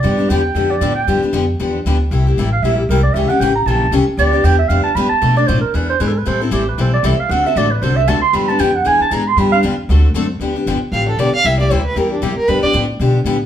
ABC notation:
X:1
M:4/4
L:1/8
Q:"Swing" 1/4=231
K:Gmix
V:1 name="Clarinet"
d2 g3 d2 g- | g z6 z | z3 f e G _B d | e ^f g ^a =a2 z2 |
d2 g e f a b a- | a d c _B =B c (3B A B | c E G B c d e f | ^f e d B c e a c' |
b a g ^f ^g a _b c' | b f z6 | z8 | z8 |
z8 |]
V:2 name="Violin"
z8 | z8 | z8 | z8 |
z8 | z8 | z8 | z8 |
z8 | z8 | z4 f A d f | e d c B _B D G B |
B d z6 |]
V:3 name="Steel-string acoustic guitar"
[D,F,B,DG] [B,DG] [D,F,B,DG] z [D,F,B,DG] z [D,F,B,DG] z | [D,F,B,DG] [B,DG] [D,F,B,DG] z [D,F,B,DG] z [D,F,B,DG] z | [C,G,_B,EG] [B,EG] [C,G,B,EG] z [C,G,B,EG] z [C,G,B,EG] z | [^C,E,^A,^CG] [A,CG] [C,E,A,CG] z [C,E,A,CG] z [C,E,A,CG] z |
[D,F,B,DG] [B,DG] [D,F,B,DG] z [D,F,B,DG] z [D,F,B,DG] z | [B,,F,A,DA] [A,DA] [B,,F,A,DA] z [E,B,D^G] z [E,B,DG] z | [E,G,CEA] [CEA] [E,G,CEA] z [E,G,CEA] z [E,G,CEA] z | [D,A,C^FA] [CFA] [D,A,CFA] z [D,A,CFA] z [D,A,CFA] z |
[D,F,B,DG] [B,DG] [D,F,B,DG] z [E,B,D^G] z [E,B,DG] z | [D,F,B,DG] [B,DG] [D,F,B,DG] z [D,A,C^FA] z [D,A,CFA] z | [D,F,B,DG] [B,DG] [D,F,B,DG] z [D,F,B,DG] z [D,F,B,DG] z | [C,G,_B,EG] [B,EG] [C,G,B,EG] z [C,G,B,EG] z [C,G,B,EG] z |
[D,F,B,DG] [B,DG] [D,F,B,DG] z [D,F,B,DG] z [D,F,B,DG] z |]
V:4 name="Upright bass" clef=bass
G,,2 E,,2 F,,2 A,,2 | G,, z F,,2 E,,2 D,,2 | C,,2 A,,,2 _B,,,2 C,,2 | ^C,, z A,,,2 ^A,,,2 =C,, z |
D,,2 E,,2 F,, z G,, z | B,,2 A,, z E,,2 ^G,,2 | A,,2 A,,,2 B,,,2 C,, z | D,,2 A,,,2 C,,2 D,,2 |
G,,2 F,,2 E,, z ^G,,2 | G,,2 E,,2 D,,2 ^F,,2 | D,,2 G,,, z A,,,2 B,,, z | C,,2 D,,2 E,,2 F,, z |
G,, z A,,2 B,,2 A,,2 |]